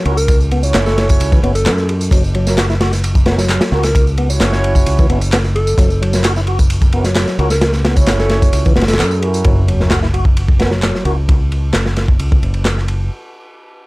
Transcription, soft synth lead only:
0.17 0.38 A#4 loud
0.86 1.07 A4 loud
1.55 2.01 A4 medium
3.84 4.04 A#4 loud
4.53 4.73 C#5 loud
5.55 6.01 A4 loud
7.51 7.71 A#4 loud
8.20 8.40 A4 loud
8.88 9.34 A4 loud

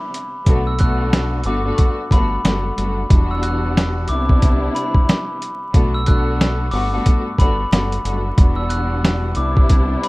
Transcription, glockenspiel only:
0.67 0.79 E6 medium
0.80 1.09 F#6 medium
1.46 1.64 D6 medium
2.12 2.62 B5 medium
3.31 3.42 E6 medium
3.43 3.73 F#6 medium
4.09 4.27 D6 medium
4.75 5.25 B5 medium
5.94 6.06 E6 medium
6.07 6.37 F#6 medium
6.71 6.90 D6 medium
7.39 7.89 B5 medium
8.56 8.69 E6 medium
8.70 9.00 F#6 medium
9.37 9.55 D6 medium
10.03 10.08 B5 medium

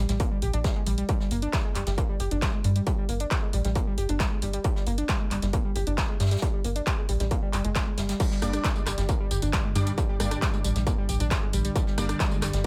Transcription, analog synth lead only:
0.09 0.13 G3 medium
0.20 0.24 A#3 medium
0.31 0.37 G3 medium
0.42 0.46 G4 medium
0.54 0.57 D4 medium
0.65 0.67 G3 loud
0.76 0.78 G#3 medium
0.87 0.89 G3 loud
0.98 1.02 G3 medium
1.09 1.13 G3 loud
1.20 1.26 G3 medium
1.31 1.35 A#3 medium
1.43 1.46 D4 medium
1.53 1.56 G3 loud
1.65 1.67 G#3 medium
1.75 1.78 G3 loud
1.87 1.91 G3 medium
1.98 2.02 A#3 medium
2.09 2.15 G3 medium
2.20 2.24 G4 medium
2.31 2.35 D4 medium
2.42 2.45 G3 loud
2.54 2.56 G#3 medium
2.65 2.67 G3 loud
2.76 2.80 G3 medium
2.87 2.91 G3 loud
2.98 3.04 G3 medium
3.09 3.13 A#3 medium
3.20 3.24 D4 medium
3.31 3.34 G3 loud
3.43 3.45 G#3 medium
3.53 3.56 G3 loud
3.65 3.69 G3 medium
3.76 3.80 A#3 medium
3.87 3.93 G3 medium
3.98 4.02 G4 medium
4.09 4.13 D4 medium
4.20 4.22 G3 loud
4.31 4.34 G#3 medium
4.42 4.45 G3 loud
4.54 4.58 G3 medium
4.65 4.69 G3 loud
4.76 4.82 G3 medium
4.87 4.91 A#3 medium
4.98 5.02 D4 medium
5.09 5.11 G3 loud
5.20 5.23 G#3 medium
5.31 5.34 G3 loud
5.42 5.46 G3 medium
5.53 5.57 A#3 medium
5.65 5.71 G3 medium
5.76 5.80 G4 medium
5.87 5.91 D4 medium
5.98 6.00 G3 loud
6.09 6.11 G#3 medium
6.20 6.22 G3 loud
6.31 6.35 G3 medium
6.42 6.46 G3 loud
6.53 6.59 G3 medium
6.64 6.68 A#3 medium
6.76 6.80 D4 medium
6.87 6.89 G3 loud
6.98 7.00 G#3 medium
7.09 7.11 G3 loud
7.20 7.24 G3 medium
7.31 7.35 A#3 medium
7.42 7.48 G3 medium
7.53 7.59 G3 loud
7.64 7.68 G#3 medium
7.75 7.80 G#3 loud
7.87 7.89 G#3 medium
7.98 8.00 G3 loud
8.09 8.11 G3 loud
8.20 8.24 G3 loud
8.31 8.37 G3 medium
8.42 8.46 A#3 medium
8.53 8.57 D4 medium
8.64 8.67 G3 loud
8.76 8.78 G#3 medium
8.87 8.89 G3 loud
8.98 9.02 G3 medium
9.09 9.13 A#3 medium
9.20 9.26 G3 medium
9.31 9.35 G4 medium
9.42 9.46 D4 medium
9.53 9.56 G3 loud
9.65 9.67 G#3 medium
9.76 9.78 G3 loud
9.87 9.91 G3 medium
9.98 10.02 G3 loud
10.09 10.15 G3 medium
10.20 10.24 A#3 medium
10.31 10.35 D4 medium
10.42 10.45 G3 loud
10.54 10.56 G#3 medium
10.64 10.67 G3 loud
10.76 10.80 G3 medium
10.87 10.91 A#3 medium
10.98 11.04 G3 medium
11.09 11.13 G4 medium
11.20 11.24 D4 medium
11.31 11.34 G3 loud
11.43 11.45 G#3 medium
11.54 11.56 G3 loud
11.65 11.69 G3 medium
11.76 11.80 G3 loud
11.87 11.93 G3 medium
11.98 12.02 A#3 medium
12.10 12.13 D4 medium
12.20 12.23 G3 loud
12.32 12.34 G#3 medium
12.43 12.45 G3 loud
12.54 12.58 G3 medium

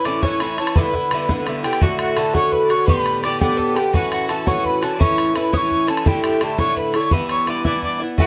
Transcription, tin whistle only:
0.05 0.24 D6 medium
0.23 0.42 C#6 medium
0.40 0.58 B5 medium
0.58 0.78 A5 medium
0.77 1.33 B5 medium
1.64 1.83 G5 medium
1.81 1.99 F#5 medium
1.99 2.16 F#5 medium
2.17 2.35 A5 medium
2.34 2.53 C#6 medium
2.52 2.71 B5 medium
2.70 2.87 C#6 medium
2.87 3.20 B5 loud
3.23 3.40 D6 medium
3.40 3.77 D6 loud
3.76 3.93 G5 medium
3.94 4.10 F#5 loud
4.11 4.28 F#5 medium
4.28 4.48 A5 medium
4.47 4.66 C#6 loud
4.65 4.81 B5 medium
4.82 5.02 A5 medium
5.00 5.37 C#6 loud
5.36 5.55 B5 medium
5.53 5.88 C#6 loud
5.53 5.58 D#6 medium
5.89 6.08 A5 medium
6.07 6.24 G5 loud
6.24 6.41 G5 medium
6.43 6.60 A5 medium
6.59 6.76 C#6 loud
6.77 6.96 B5 medium
6.95 7.14 C#6 medium
7.12 7.32 B5 loud
7.30 7.50 C#6 medium
7.48 7.65 D6 medium
7.66 7.82 D6 loud
7.83 7.99 D6 medium
8.18 8.27 F#5 medium

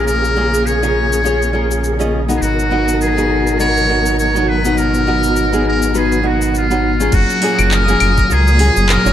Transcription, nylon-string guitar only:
0.00 0.33 C#4 medium
0.00 0.33 F4 medium
0.00 0.33 G#4 medium
0.00 0.34 A#4 medium
0.36 0.78 C#4 medium
0.36 0.79 F4 medium
0.36 0.79 G#4 medium
0.36 0.79 A#4 medium
0.82 1.21 C#4 medium
0.82 1.22 F4 medium
0.82 1.22 G#4 medium
0.82 1.22 A#4 medium
1.24 1.51 C#4 medium
1.24 1.51 F4 medium
1.24 1.51 G#4 medium
1.24 1.51 C#5 medium
1.53 1.96 C#4 medium
1.53 1.96 F4 medium
1.53 1.96 G#4 medium
1.53 1.96 A#4 medium
1.99 2.19 C#4 medium
1.99 2.19 F4 medium
1.99 2.20 G#4 medium
1.99 2.20 D#5 medium
2.28 2.68 B3 medium
2.28 2.68 D#4 medium
2.28 2.68 F#4 medium
2.28 2.68 A#4 medium
2.71 3.13 B3 medium
2.71 3.14 D#4 medium
2.71 3.14 F#4 medium
2.71 3.14 A#4 medium
3.17 3.56 B3 medium
3.17 3.56 D#4 medium
3.17 3.57 F#4 medium
3.17 3.57 G#4 medium
3.59 3.86 B3 medium
3.59 3.86 D#4 medium
3.59 3.86 F#4 medium
3.59 3.87 B4 medium
3.88 4.31 B3 medium
3.88 4.31 D#4 medium
3.88 4.31 F#4 medium
3.88 4.32 A#4 medium
4.34 4.54 B3 medium
4.34 4.55 D#4 medium
4.34 4.55 F#4 medium
4.34 4.55 C#5 medium
4.65 5.04 B3 medium
4.65 5.04 D#4 medium
4.65 5.04 F#4 medium
4.65 5.04 A#4 medium
5.07 5.49 B3 medium
5.07 5.49 D#4 medium
5.07 5.49 F#4 medium
5.07 5.50 A#4 medium
5.52 5.92 B3 medium
5.52 5.92 D#4 medium
5.52 5.92 F#4 medium
5.52 5.92 G#4 medium
5.94 6.21 B3 medium
5.94 6.21 D#4 medium
5.94 6.21 F#4 medium
5.94 6.21 B4 medium
6.23 6.66 B3 medium
6.23 6.66 D#4 medium
6.23 6.66 F#4 medium
6.23 6.67 A#4 medium
6.70 6.90 B3 medium
6.70 6.90 D#4 medium
6.70 6.90 F#4 medium
6.70 6.91 C#5 medium
7.00 7.39 C#4 medium
7.00 7.39 F4 medium
7.00 7.39 G#4 medium
7.00 7.40 A#4 medium
7.42 7.84 A#3 medium
7.42 7.84 C#4 medium
7.42 7.85 F4 medium
7.42 7.85 G#4 loud
7.88 8.27 A#3 medium
7.88 8.27 C#4 medium
7.88 8.28 F4 medium
7.88 8.28 G#4 loud
8.30 8.56 A#3 medium
8.30 8.57 C#4 medium
8.30 8.57 F4 medium
8.30 8.57 A#4 medium
8.59 9.01 A#3 medium
8.59 9.02 C#4 medium
8.59 9.02 F4 medium
8.59 9.02 G#4 medium
9.05 9.13 A#3 medium
9.05 9.13 C#4 medium
9.05 9.13 F4 medium
9.05 9.13 C#5 medium

